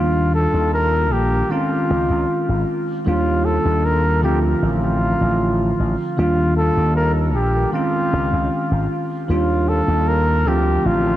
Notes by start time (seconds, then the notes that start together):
Already playing: D#2 D#3 G3 A#3 D4 F4
0.35 A4
0.54 D#2
0.74 A#4
1.12 A#1 G4
1.49 D#3 G#3 C4 C#4 F4
1.90 C#2
2.10 C#2
2.49 G#1
3.05 D#2 D#3 G3 A#3 D4 F4
3.45 A4
3.65 D#2
3.85 A#4
4.22 D2 D3 F3 A3 C4 F4 G4
4.62 A1 F4
5.21 A1
5.79 A1
6.17 D#2 D#3 G3 A#3 D4 F4
6.57 A4
6.77 D#2
6.96 A#4
7.35 A#1 G4
7.72 D#3 G#3 C4 C#4 F4
8.13 C#2
8.33 C#2
8.71 G#1
9.28 D#2 D#3 G3 A#3 D4 F4
9.69 A4
9.88 D#2
10.09 A#4
10.45 D2 D3 F3 A3 C4 F4 G4
10.85 A1 F4